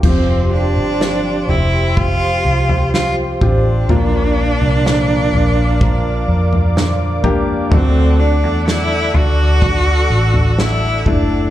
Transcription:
0.03 F1 F3 C4 F4 G4 C5 G5 C6, kick, floor tom, crash
0.51 C4 D4 F4 G4
0.76 G1
1.00 F3 C4 F4 G4, snare
1.49 F1 C4 E4 G4, floor tom
1.97 F3 C4 F4 G4, kick
2.45 C2
2.69 floor tom
2.93 F3 C4 F4 G4, snare
3.41 A1 C4 D4 F4 G4, kick, floor tom
3.88 A#1 A#2 D3 F3 A#3 D4 F4 A#4 D5 F5 D6, floor tom
4.37 F3 A#3 D4 A#4
4.62 C2
4.85 A#2 D3 F3 A#3 D4 A#4, snare
5.33 A#1 F3 A#3 D4 A#4, floor tom
5.81 F3 A#3 D4 A#4, kick
6.28 F2
6.53 floor tom
6.76 A#2 D3 F3 A#3 D4 A#4, snare
7.23 F3 A#3 D4 G4 A#4, kick, floor tom
7.70 D2 D3 A3 C4 D4 F#4 A4 F#5, kick, floor tom
8.19 D4 F#4 A4
8.43 E2
8.67 D3 A3 D4 E4 F#4 A4, snare
9.14 D2 D4 F#4 A4, floor tom
9.62 A3 D4 F#4 A4 E6, kick, floor tom
10.10 A1
10.34 floor tom
10.57 D3 A3 D4 E4 F#4 A4, snare
11.05 F#1 A3 D4 E4 F#4 A4, kick, floor tom

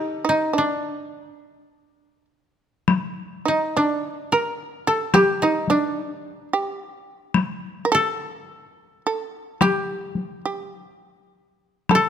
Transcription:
Already playing: D#4 G4 A4 A#4 D#5
0.25 D#4
0.29 D#4
0.53 D4
0.58 D4
2.88 taiko rim, taiko high
3.45 D#4
3.77 D4
4.32 A#4
4.87 A4
5.14 G4, taiko rim, taiko high
5.42 D#4
5.68 D4, taiko high
6.53 G4
7.34 taiko rim, taiko high
7.85 A#4
7.92 A4
9.07 A4
9.61 G4, taiko rim, taiko high
10.15 taiko high
10.45 G4
11.89 A4, taiko rim, taiko high
11.95 A4

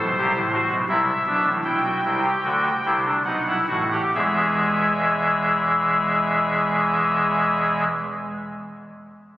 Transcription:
Already playing: C5
0.00 B1 B2
0.18 C2 C3 G4
0.36 A1 A2
0.54 F#4
0.71 B1 B2
0.88 C2 C3 E4 E5
1.26 B1 B2 D4
1.45 A1 A2
1.64 B1 B2 E4 G5
1.85 F#4
2.05 C2 C3 E4
2.24 G4
2.44 D2 D3 F#4
2.85 C2 C3 E4
3.04 D4
3.25 B1 B2 D#4 F#5
3.47 E4
3.68 A1 A2 F#4
3.91 G4
4.14 E1 E2 E3 G#3 G#4 E5

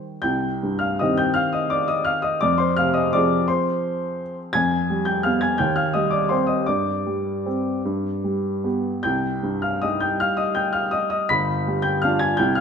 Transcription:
Already playing: D#3 G3 G4
0.22 C2 G5 G6
0.63 G2
0.79 F5 F6
0.99 D#3 C4 G4 D#5 D#6
1.17 G5 G6
1.34 F5 F6
1.53 D#5 D#6
1.70 D5 D6
1.88 D#5 D#6
2.05 F5 F6
2.22 D#5 D#6
2.41 F2 D5 D6
2.58 C5 C6
2.76 C3 F5 F6
2.94 D#5 D#6
3.13 F3 C4 G#4 D5 D6
3.48 C5 C6
4.53 F2 G#5 G#6
4.90 G3
5.05 G5 G6
5.23 B3 G4 F5 F6
5.41 G#5 G#6
5.58 D#2 G5 G6
5.76 F5 F6
5.94 G3 D#5 D#6
6.11 D5 D6
6.29 C4 G4 C5 C6
6.47 D#5 D#6
6.66 G2 D5 D6
7.06 G3
7.46 C4 G4
7.85 G2
8.24 G3
8.64 B3 G4
9.03 C2 G5 G6
9.43 G2
9.62 F5 F6
9.82 G3 D#4 G4 D#5 D#6
10.00 G5 G6
10.20 F5 F6
10.37 D#5 D#6
10.55 G5 G6
10.73 F5 F6
10.91 D#5 D#6
11.10 D#5 D#6
11.29 G1 B5 B6
11.67 G3
11.82 G5 G6
12.02 D4 F4 F5 F6
12.19 G#5 G#6
12.37 C2 G5 G6
12.55 F5 F6

